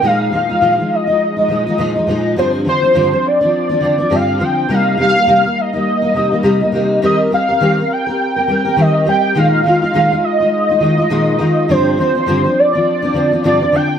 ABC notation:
X:1
M:4/4
L:1/16
Q:"Swing 16ths" 1/4=103
K:Bbmix
V:1 name="Soft synth lead"
f2 f4 e8- e2 | c2 c4 d6 f2 g2 | f2 f4 e8- e2 | e2 f4 g6 e2 g2 |
f2 f4 e8- e2 | c2 c4 d6 d2 g2 |]
V:2 name="Steel-string acoustic guitar"
[B,,F,A,E]2 [B,,F,A,E] [F,A,E] [B,,F,A,E] [F,A,E]2 [F,A,E]2 [F,A,E] [B,,F,A,E] [F,A,E] [B,,F,A,E] [F,A,E] [B,,F,A,E]2 | [G,,D,F,CD]2 [D,F,CD] [F,CD] [G,,D,F,CD] [F,CD]2 [F,CD]2 [F,CD] [D,F,CD] [F,CD] [G,,D,F,CD]2 [D,F,CD]2 | [C,G,B,E]2 [C,G,B,E] [G,B,E] [C,G,B,E] [G,B,E]2 [G,B,E]2 [G,B,E] [C,G,B,E] [G,B,E] [C,G,B,E] [G,B,E] [C,G,B,E]2 | [E,G,CGB]2 [G,CGB] [CGB] [E,G,CGB] [CGB]2 [CGB]2 [CGB] [G,CGB] [CGB] [E,G,CGB]2 [G,CGB]2 |
[B,,E,A,EF]2 [E,A,EF] [A,EF] [B,,E,A,EF] [A,EF]2 [A,EF]2 [A,EF] [E,A,EF] [A,EF] [B,,E,A,EF]2 [E,A,EF]2 | [G,,D,F,CD]2 [D,F,CD] [F,CD] [G,,D,F,CD] [F,CD]2 [F,CD]2 [F,CD] [D,F,CD] [F,CD] [G,,D,F,CD] [F,CD] [D,F,CD]2 |]